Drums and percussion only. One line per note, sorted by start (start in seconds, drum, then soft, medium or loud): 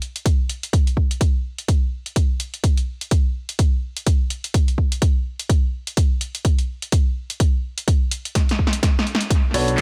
0.02 closed hi-hat soft
0.16 closed hi-hat soft
0.26 kick loud
0.26 closed hi-hat medium
0.49 closed hi-hat medium
0.63 closed hi-hat soft
0.73 kick loud
0.73 closed hi-hat medium
0.87 closed hi-hat soft
0.97 kick medium
1.11 closed hi-hat soft
1.21 kick loud
1.21 closed hi-hat medium
1.58 closed hi-hat soft
1.68 kick loud
1.68 closed hi-hat medium
2.06 closed hi-hat soft
2.16 kick loud
2.16 closed hi-hat medium
2.40 closed hi-hat medium
2.54 closed hi-hat soft
2.64 kick loud
2.64 closed hi-hat medium
2.77 closed hi-hat soft
3.01 closed hi-hat soft
3.11 kick loud
3.11 closed hi-hat medium
3.49 closed hi-hat soft
3.59 kick loud
3.59 closed hi-hat medium
3.97 closed hi-hat medium
4.07 kick loud
4.07 closed hi-hat medium
4.30 closed hi-hat medium
4.44 closed hi-hat soft
4.54 kick loud
4.54 closed hi-hat medium
4.68 closed hi-hat soft
4.78 kick medium
4.92 closed hi-hat medium
5.02 kick loud
5.02 closed hi-hat medium
5.40 closed hi-hat medium
5.50 kick loud
5.50 closed hi-hat medium
5.87 closed hi-hat soft
5.97 kick loud
5.97 closed hi-hat medium
6.21 closed hi-hat medium
6.35 closed hi-hat medium
6.45 kick loud
6.45 closed hi-hat medium
6.59 closed hi-hat soft
6.82 closed hi-hat medium
6.92 kick loud
6.92 closed hi-hat medium
7.30 closed hi-hat medium
7.40 kick loud
7.40 closed hi-hat medium
7.78 closed hi-hat medium
7.88 kick loud
7.88 closed hi-hat medium
8.11 closed hi-hat medium
8.25 closed hi-hat medium
8.35 kick loud
8.35 snare medium
8.35 closed hi-hat medium
8.49 snare medium
8.49 closed hi-hat soft
8.59 kick medium
8.67 snare medium
8.73 closed hi-hat medium
8.83 kick loud
8.83 snare medium
8.83 closed hi-hat medium
8.99 snare medium
9.07 closed hi-hat soft
9.15 snare loud
9.21 closed hi-hat medium
9.30 kick loud
9.30 closed hi-hat medium
9.54 open hi-hat loud
9.68 closed hi-hat medium
9.78 kick loud
9.78 clap loud
9.78 closed hi-hat medium